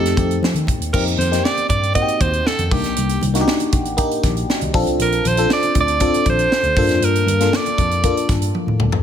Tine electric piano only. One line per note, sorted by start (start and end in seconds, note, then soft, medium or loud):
0.00 0.12 F2 loud
0.17 0.37 F2 medium
0.42 0.52 F3 medium
0.54 0.65 D#3 medium
0.80 0.90 D#2 medium
0.94 1.14 F2 loud
1.18 1.38 F2 loud
1.70 2.00 G2 medium
2.21 2.41 D#2 loud
2.58 2.69 F2 medium
2.72 2.82 C2 loud
2.84 2.94 A#1 medium
2.97 3.17 C2 loud
3.23 3.43 C2 loud
3.73 4.03 A1 medium
4.24 4.44 A#1 loud
4.61 4.71 C2 medium
4.74 4.84 A#1 loud
4.86 4.97 C2 medium
4.99 5.19 A#1 medium
5.25 5.45 A#1 loud
5.76 6.06 D2 medium
6.26 6.46 A#1 loud
6.63 6.74 D2 medium
6.77 6.87 G2 medium
6.88 6.99 F2 medium
7.00 7.21 G2 medium
7.26 7.47 G2 loud
7.78 8.08 F2 medium
8.29 8.49 G2 loud
8.67 8.77 A2 medium
8.79 8.89 D2 medium
8.92 9.02 D#2 medium